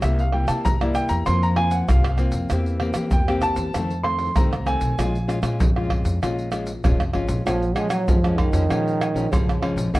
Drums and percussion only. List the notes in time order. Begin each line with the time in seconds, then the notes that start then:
0.02 pandeiro, tamborim, shaker, surdo
0.19 pandeiro, shaker
0.32 pandeiro, tamborim
0.48 pandeiro, tamborim, shaker
0.65 pandeiro, shaker, surdo
0.81 pandeiro, tamborim, shaker
0.95 pandeiro, tamborim, shaker
1.09 pandeiro, shaker
1.26 pandeiro, tamborim, shaker, surdo
1.43 pandeiro, shaker
1.57 pandeiro, tamborim
1.71 pandeiro, shaker
1.89 pandeiro, tamborim, shaker, surdo
2.04 pandeiro, tamborim, shaker
2.18 pandeiro, tamborim, shaker
2.32 pandeiro, shaker
2.50 pandeiro, tamborim, shaker, surdo
2.66 pandeiro, shaker
2.80 pandeiro, tamborim
2.94 pandeiro, tamborim, shaker
3.11 pandeiro, shaker, surdo
3.28 pandeiro, tamborim, shaker
3.42 pandeiro, tamborim, shaker
3.56 pandeiro, shaker
3.74 pandeiro, tamborim, shaker, surdo
3.91 pandeiro, shaker
4.04 pandeiro, tamborim
4.19 pandeiro, shaker
4.36 pandeiro, tamborim, shaker, surdo
4.53 pandeiro, tamborim, shaker
4.67 pandeiro, tamborim, shaker
4.81 pandeiro, shaker
4.99 pandeiro, tamborim, shaker, surdo
5.15 pandeiro, shaker
5.29 pandeiro, tamborim, shaker
5.43 pandeiro, tamborim, shaker
5.60 pandeiro, shaker, surdo
5.76 pandeiro, tamborim, shaker
5.90 pandeiro, tamborim, surdo
6.05 pandeiro, shaker
6.23 pandeiro, tamborim, shaker, surdo
6.39 pandeiro, shaker
6.52 pandeiro, tamborim, shaker
6.67 pandeiro, shaker
6.84 pandeiro, tamborim, shaker, surdo
7.00 pandeiro, tamborim, shaker
7.13 pandeiro, tamborim
7.28 pandeiro, shaker
7.47 pandeiro, tamborim, low agogo, shaker, surdo
7.62 pandeiro, shaker
7.76 pandeiro, tamborim, low agogo, shaker
7.90 pandeiro, tamborim, low agogo, shaker
8.08 pandeiro, shaker, surdo
8.24 pandeiro, tamborim, shaker
8.38 pandeiro, tamborim, high agogo, surdo
8.53 pandeiro, shaker
8.70 pandeiro, tamborim, low agogo, shaker, surdo
8.87 pandeiro, shaker
9.01 pandeiro, tamborim, low agogo, shaker
9.16 pandeiro, shaker
9.33 pandeiro, tamborim, high agogo, shaker, surdo
9.49 pandeiro, tamborim, shaker
9.63 pandeiro, tamborim, high agogo
9.78 pandeiro, shaker
9.95 pandeiro, tamborim, low agogo, shaker, surdo